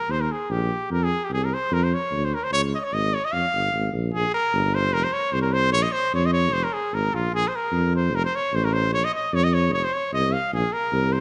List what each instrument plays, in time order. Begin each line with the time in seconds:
Already playing: trumpet A#4
0.08 tuba D#2, trumpet C5
0.21 trumpet A#4
0.31 trumpet G#4
0.49 tuba A#1, trumpet G4
0.90 tuba F2, trumpet A#4
1.04 trumpet G#4
1.24 trumpet G4
1.30 tuba C2, trumpet G#4
1.45 trumpet A#4
1.54 trumpet C5
1.71 tuba F2, trumpet A#4
1.84 trumpet C5
1.94 trumpet C#5
2.11 tuba D2
2.25 trumpet C5
2.34 trumpet A#4
2.44 trumpet C5
2.52 tuba C#2, trumpet C#5
2.75 trumpet D#5
2.80 trumpet C#5 D#5
2.92 tuba G#1, trumpet D#5
3.14 trumpet C#5
3.25 trumpet D#5
3.32 tuba F2, trumpet F5
3.53 tuba G1
3.74 tuba G#1
3.93 tuba A#1
4.13 tuba A#1, trumpet G#4
4.34 trumpet A#4
4.53 tuba G1
4.75 trumpet C5
4.93 tuba F1, trumpet A#4
5.04 trumpet C5
5.13 trumpet C#5
5.32 tuba C2, trumpet C5
5.42 trumpet A#4
5.53 trumpet C5
5.73 tuba A#1, trumpet C#5
5.82 trumpet D#5
5.92 trumpet C5
6.13 tuba F2, trumpet C#5
6.26 trumpet D#5
6.33 trumpet C#5
6.52 tuba F1, trumpet C5
6.64 trumpet A#4
6.73 trumpet G#4
6.92 tuba G#1, trumpet A#4
7.13 tuba A#1, trumpet F4
7.32 tuba A#1, trumpet G#4
7.48 trumpet C5
7.56 trumpet A#4
7.72 tuba F2
7.96 trumpet C5
8.13 tuba F1, trumpet A#4
8.25 trumpet C5
8.35 trumpet C#5
8.53 tuba A1, trumpet C5
8.65 trumpet A#4
8.73 trumpet C5
8.92 tuba A#1, trumpet C#5
9.04 trumpet D#5
9.14 trumpet D#5
9.33 tuba F2, trumpet C#5
9.44 trumpet D#5
9.53 trumpet C#5
9.73 tuba F1, trumpet C#5
9.84 trumpet C5
9.93 trumpet C#5
10.13 tuba C2, trumpet D#5
10.33 trumpet F5
10.52 tuba A#1, trumpet G#4
10.73 trumpet A#4
10.92 tuba C2
11.13 trumpet C5